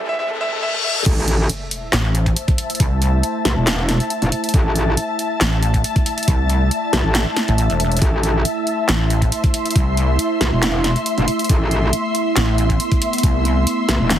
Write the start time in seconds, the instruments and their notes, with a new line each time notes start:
Already playing: riser
0.09 grand piano E5
0.19 grand piano E5, reverse cymbal
0.31 grand piano A4
0.41 grand piano E5
0.52 grand piano A4
0.63 grand piano E5
0.74 grand piano A4
0.84 grand piano E5
0.96 grand piano A4
1.06 wobble bass A1, ambient pad A3 E4 C5, kick, closed hi-hat, crash, sub drop
1.28 closed hi-hat
1.36 ambient pad E5
1.50 closed hi-hat
1.65 ambient pad A5
1.71 closed hi-hat
1.93 wobble bass A1, snare, clap, closed hi-hat
2.15 closed hi-hat
2.26 kick, closed hi-hat
2.36 closed hi-hat
2.48 kick, closed hi-hat
2.58 open hi-hat
2.70 closed hi-hat
2.75 closed hi-hat
2.80 wobble bass C2, kick, closed hi-hat
3.02 closed hi-hat
3.23 closed hi-hat
3.45 wobble bass B1, snare, closed hi-hat
3.57 wobble bass E1
3.67 snare, clap, closed hi-hat
3.89 snare, closed hi-hat
4.00 closed hi-hat
4.10 closed hi-hat
4.22 wobble bass E1, closed hi-hat
4.32 open hi-hat
4.44 closed hi-hat
4.49 closed hi-hat
4.54 wobble bass A1, ambient pad D5, kick, closed hi-hat
4.76 closed hi-hat
4.97 closed hi-hat
5.19 closed hi-hat
5.41 wobble bass A1, snare, clap, closed hi-hat
5.63 closed hi-hat
5.74 kick, closed hi-hat
5.84 closed hi-hat
5.96 kick, closed hi-hat
6.06 open hi-hat
6.18 closed hi-hat
6.23 closed hi-hat
6.28 wobble bass C2, kick, closed hi-hat
6.50 closed hi-hat
6.71 closed hi-hat
6.93 wobble bass B1, snare, closed hi-hat
7.05 wobble bass A1
7.15 snare, clap, closed hi-hat
7.36 snare, closed hi-hat
7.48 wobble bass A1, closed hi-hat
7.58 closed hi-hat
7.70 wobble bass E1, closed hi-hat
7.80 open hi-hat
7.92 closed hi-hat
7.97 closed hi-hat
8.02 wobble bass A1, ambient pad C5, kick, closed hi-hat
8.23 closed hi-hat
8.45 closed hi-hat
8.61 ambient pad C6
8.67 closed hi-hat
8.89 wobble bass A1, snare, clap, closed hi-hat
9.10 closed hi-hat
9.22 kick, closed hi-hat
9.32 closed hi-hat
9.44 kick, closed hi-hat
9.54 open hi-hat
9.65 closed hi-hat
9.71 closed hi-hat
9.76 wobble bass C2, kick, closed hi-hat
9.97 closed hi-hat
10.19 closed hi-hat
10.41 wobble bass B1, snare, closed hi-hat
10.52 wobble bass E1
10.63 snare, clap, closed hi-hat
10.84 snare, closed hi-hat
10.96 closed hi-hat
11.06 closed hi-hat
11.18 wobble bass E1, closed hi-hat
11.28 open hi-hat
11.39 closed hi-hat
11.44 closed hi-hat
11.49 wobble bass A1, ambient pad B3, kick, closed hi-hat
11.71 closed hi-hat
11.93 closed hi-hat
12.15 closed hi-hat
12.36 wobble bass A1, snare, clap, closed hi-hat
12.58 closed hi-hat
12.70 kick, closed hi-hat
12.80 closed hi-hat
12.92 kick, closed hi-hat
13.02 open hi-hat
13.13 closed hi-hat
13.18 closed hi-hat
13.23 wobble bass C2, kick, closed hi-hat
13.45 closed hi-hat
13.67 closed hi-hat
13.89 wobble bass B1, snare, closed hi-hat
14.00 wobble bass E1
14.10 snare, clap, closed hi-hat, high tom